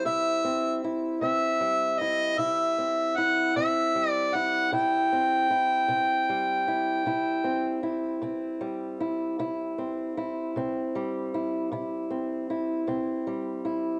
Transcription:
0.00 1.60 G3 medium
0.00 0.44 C4 medium
0.05 0.75 C3 medium
0.05 0.84 E4 medium
0.05 0.79 E5 medium
0.44 1.22 C4 medium
0.84 2.01 E4 medium
1.21 1.92 C3 medium
1.21 2.78 C4 medium
1.21 2.01 E5 medium
1.61 3.95 G3 medium
2.00 2.38 E4 medium
2.00 2.40 D#5 medium
2.38 3.08 C3 medium
2.38 3.18 E4 medium
2.38 3.19 E5 medium
2.78 3.56 C4 medium
3.17 4.35 E4 medium
3.17 3.56 F#5 medium
3.56 4.26 C3 medium
3.56 5.12 C4 medium
3.56 4.10 E5 medium
3.95 6.29 G3 medium
4.10 4.36 D5 medium
4.35 4.72 E4 medium
4.35 4.72 F#5 loud
4.72 5.42 C3 medium
4.72 5.50 E4 medium
4.72 7.80 G5 loud
5.12 5.89 C4 medium
5.50 6.67 E4 medium
5.88 6.58 C3 medium
5.88 7.44 C4 medium
6.29 8.60 G3 medium
6.68 7.06 E4 medium
7.06 7.75 C3 medium
7.06 7.82 E4 medium
7.44 8.22 C4 medium
7.83 8.99 E4 medium
8.22 8.92 C3 medium
8.22 9.78 C4 medium
8.61 10.94 G3 medium
9.00 9.38 E4 medium
9.39 10.09 C3 medium
9.39 10.16 E4 medium
9.78 10.57 C4 medium
10.17 11.33 E4 medium
10.56 11.25 C3 medium
10.56 12.10 C4 medium
10.95 13.26 G3 medium
11.34 11.71 E4 medium
11.72 12.41 C3 medium
11.72 12.49 E4 medium
12.10 12.87 C4 medium
12.50 13.64 E4 medium
12.87 13.57 C3 medium
12.87 14.00 C4 medium
13.27 14.00 G3 medium
13.65 14.00 E4 medium

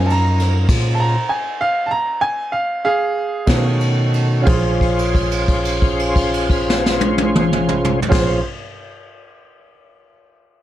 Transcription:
0.00 0.66 F#2 medium
0.00 0.64 F3 soft
0.00 0.65 F#3 soft
0.00 0.65 C#4 medium
0.00 0.67 C#4 medium
0.00 0.67 D#4 medium
0.00 0.67 F4 medium
0.00 0.67 A#4 medium
0.00 0.10 G#5 medium
0.06 0.10 A5 medium
0.06 ride medium
0.11 0.98 A#5 medium
0.40 snare soft
0.40 ride medium
0.69 1.16 A#2 medium
0.69 1.17 C#4 medium
0.69 1.17 F4 medium
0.69 1.17 G#4 medium
0.69 1.16 C5 medium
0.69 kick loud
0.69 crash medium
0.69 ride medium
0.95 0.99 A5 medium
1.00 1.29 A#5 medium
1.29 1.59 G#5 medium
1.61 1.90 F5 medium
1.86 1.90 A5 medium
1.91 2.21 A#5 medium
2.21 2.51 G#5 loud
2.52 2.83 F5 medium
2.85 3.77 G#4 medium
2.85 3.78 F5 medium
3.46 4.44 B2 medium
3.46 4.42 D#3 soft
3.46 4.43 A3 soft
3.46 4.40 C#4 medium
3.46 4.47 D#4 medium
3.46 4.47 F#4 medium
3.46 4.47 A4 medium
3.46 4.47 C#5 medium
3.46 kick medium
3.46 snare loud
3.46 ride medium
3.81 ride medium
4.14 ride medium
4.42 7.97 C#4 medium
4.42 7.98 F4 medium
4.42 7.99 G#4 medium
4.46 8.00 A#1 loud
4.46 8.00 C#4 medium
4.46 8.00 F4 medium
4.46 8.00 G#4 medium
4.46 7.99 C5 medium
4.46 8.00 C5 medium
4.46 kick loud
4.46 crash medium
4.81 kick medium
4.81 crash soft
4.99 crash soft
5.15 kick medium
5.15 crash soft
5.31 crash soft
5.48 kick medium
5.48 crash soft
5.65 crash medium
5.82 kick medium
5.82 crash soft
5.99 crash soft
6.16 kick medium
6.16 crash medium
6.34 crash medium
6.50 kick medium
6.50 crash medium
6.70 snare medium
6.86 snare medium
7.01 high tom medium
7.18 high tom medium
7.36 mid tom loud
7.53 mid tom loud
7.69 mid tom medium
7.85 mid tom loud
8.02 floor tom loud
8.09 8.40 A#1 medium
8.09 8.38 C#4 medium
8.09 8.41 C#4 medium
8.09 8.39 F4 medium
8.09 8.41 F4 medium
8.09 8.41 G#4 medium
8.09 8.40 G#4 medium
8.09 8.41 C5 medium
8.09 8.40 C5 medium
8.09 kick loud
8.09 crash loud
8.14 snare loud

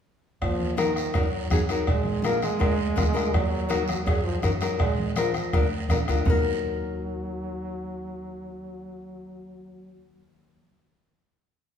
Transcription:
0.41 1.00 D#2 medium
0.41 0.79 F3 medium
0.41 bombo low medium
0.41 bombo rim medium
0.41 cowbell medium
0.41 high conga soft
0.41 long guiro medium
0.60 high conga medium
0.77 1.18 D#3 medium
0.77 0.90 D#4 medium
0.77 0.91 F#4 medium
0.77 0.91 A#4 medium
0.77 bombo rim medium
0.77 high conga loud
0.77 short guiro medium
0.96 bombo rim medium
0.96 short guiro medium
1.14 1.44 F#2 medium
1.14 1.51 F#3 medium
1.14 1.27 D#4 medium
1.14 1.27 F#4 medium
1.14 1.28 A#4 medium
1.14 bombo low medium
1.14 bombo rim medium
1.14 cowbell medium
1.14 high conga soft
1.14 long guiro medium
1.50 1.80 F#2 medium
1.50 1.90 F#3 medium
1.50 1.58 D#4 medium
1.50 1.58 F#4 medium
1.50 1.58 G#4 medium
1.50 bombo low medium
1.50 bombo rim medium
1.50 high conga medium
1.50 low timbale medium
1.50 short guiro medium
1.69 1.88 D#4 medium
1.69 1.88 F#4 medium
1.69 1.88 A#4 medium
1.69 bombo rim medium
1.69 short guiro medium
1.86 2.46 A#1 medium
1.86 2.28 G#3 loud
1.86 bombo low medium
1.86 bombo rim medium
1.86 cowbell medium
1.86 high conga soft
1.86 long guiro medium
2.04 high conga medium
2.22 2.43 A#3 loud
2.22 2.37 D4 medium
2.22 2.37 F4 medium
2.22 2.37 A#4 medium
2.22 bombo rim medium
2.22 high conga medium
2.22 short guiro medium
2.42 3.35 G#3 loud
2.42 bombo rim medium
2.42 high conga medium
2.42 short guiro medium
2.59 2.90 D2 medium
2.59 2.73 D4 medium
2.59 2.73 F4 medium
2.59 2.73 A#4 medium
2.59 bombo low medium
2.59 bombo rim medium
2.59 cowbell medium
2.59 high conga soft
2.59 long guiro medium
2.96 3.27 D2 medium
2.96 3.03 D4 medium
2.96 3.03 F4 medium
2.96 3.03 A#4 medium
2.96 bombo low medium
2.96 bombo rim medium
2.96 high conga medium
2.96 low conga medium
2.96 low timbale medium
2.96 short guiro medium
3.13 3.33 D4 medium
3.13 3.33 F4 medium
3.13 3.33 A#4 medium
3.13 bombo rim medium
3.13 short guiro medium
3.33 3.92 D#2 loud
3.33 4.05 F#3 loud
3.33 bombo low medium
3.33 bombo rim medium
3.33 cowbell loud
3.33 high conga soft
3.33 long guiro medium
3.69 3.82 D#4 medium
3.69 3.82 F#4 medium
3.69 3.83 A#4 loud
3.69 bombo rim medium
3.69 high conga medium
3.69 short guiro medium
3.88 bombo rim medium
3.88 high conga medium
3.88 short guiro medium
4.05 4.36 F#2 medium
4.05 4.23 F#3 medium
4.05 4.19 D#4 medium
4.05 4.20 F#4 medium
4.05 4.20 G#4 medium
4.05 bombo low medium
4.05 bombo rim medium
4.05 cowbell medium
4.05 high conga soft
4.05 long guiro medium
4.23 4.41 F3 medium
4.42 4.73 F#2 medium
4.42 4.59 F#3 medium
4.42 4.50 D#4 medium
4.42 4.50 F#4 medium
4.42 4.50 A#4 medium
4.42 bombo rim medium
4.42 high conga medium
4.42 short guiro medium
4.60 4.78 F#3 medium
4.60 4.80 D#4 medium
4.60 4.80 F#4 medium
4.60 4.80 A#4 medium
4.60 bombo rim medium
4.60 short guiro medium
4.79 5.38 A#1 medium
4.79 5.13 G#3 medium
4.79 bombo low medium
4.79 bombo rim medium
4.79 cowbell loud
4.79 high conga soft
4.79 long guiro medium
4.98 high conga medium
5.16 5.59 F3 medium
5.16 5.29 D4 medium
5.16 5.29 F4 medium
5.16 5.30 A#4 loud
5.16 bombo rim medium
5.16 high conga medium
5.16 short guiro medium
5.33 bombo rim medium
5.33 high conga medium
5.33 short guiro medium
5.53 5.82 D2 medium
5.53 5.66 D4 medium
5.53 5.66 F4 medium
5.53 5.66 A#4 medium
5.53 bombo low medium
5.53 bombo rim medium
5.53 cowbell medium
5.53 high conga soft
5.53 long guiro medium
5.89 6.06 A#1 medium
5.89 6.23 D3 medium
5.89 5.96 D4 medium
5.89 5.96 F4 medium
5.89 5.96 A#4 medium
5.89 bombo low medium
5.89 bombo rim medium
5.89 high conga medium
5.89 low conga medium
5.89 low timbale medium
5.89 short guiro medium
6.08 6.24 D2 medium
6.08 6.25 D4 medium
6.08 6.27 F4 medium
6.08 6.27 A#4 medium
6.08 bombo rim medium
6.08 short guiro medium
6.25 10.61 D#2 medium
6.25 9.93 F#3 medium
6.25 10.60 D#4 medium
6.25 10.62 F#4 medium
6.25 bombo low medium
6.25 low conga loud
6.25 low timbale medium
6.25 long guiro medium
6.30 10.64 A#4 medium

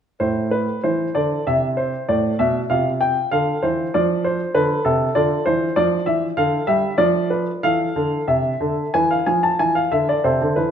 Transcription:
0.20 0.66 A2 soft
0.20 2.67 E4 soft
0.20 0.49 C5 soft
0.51 0.80 B4 soft
0.83 1.07 E3 soft
0.83 1.15 C5 soft
1.15 1.38 D3 soft
1.15 1.43 D5 soft
1.47 1.92 C3 soft
1.47 1.66 E5 soft
1.77 2.09 C5 soft
2.09 2.31 A2 soft
2.09 2.40 D5 soft
2.39 2.62 B2 soft
2.39 2.58 E5 soft
2.70 3.15 C3 soft
2.70 5.11 F4 soft
2.70 2.88 F5 soft
3.01 3.29 G5 soft
3.31 3.54 D3 soft
3.31 3.63 F5 medium
3.62 3.85 E3 soft
3.62 3.94 C5 soft
3.94 4.39 F3 soft
3.94 4.25 D5 medium
4.24 4.55 C5 soft
4.55 4.77 D3 soft
4.55 4.85 B4 medium
4.85 5.07 C3 soft
4.85 5.12 A4 soft
5.15 5.37 D3 soft
5.15 7.60 F4 soft
5.15 5.42 D5 medium
5.46 5.68 E3 soft
5.46 5.76 C5 medium
5.76 5.98 F3 soft
5.76 6.06 D5 medium
6.06 6.28 E3 soft
6.06 6.24 E5 soft
6.37 6.59 D3 soft
6.37 6.67 F5 medium
6.67 6.90 G3 soft
6.67 6.95 E5 medium
6.98 7.45 F3 soft
6.98 7.30 D5 medium
7.30 7.50 B4 soft
7.63 7.87 E3 soft
7.63 8.90 A4 soft
7.63 8.24 F5 medium
7.96 8.19 D3 soft
8.28 8.51 C3 soft
8.28 8.93 E5 soft
8.61 8.84 D3 soft
8.94 9.18 E3 soft
8.94 10.20 B4 soft
8.94 9.10 G#5 medium
9.11 9.26 F5 soft
9.26 9.50 F3 soft
9.26 9.43 G#5 soft
9.43 9.59 A5 soft
9.59 9.83 E3 soft
9.59 9.75 G#5 medium
9.75 9.91 F5 soft
9.92 10.15 D3 soft
9.92 10.08 E5 soft
10.09 10.25 D5 soft
10.24 10.40 C3 soft
10.24 10.71 A4 soft
10.24 10.56 C5 soft
10.42 10.56 D3 soft
10.56 10.71 E3 soft
10.56 10.71 B4 soft

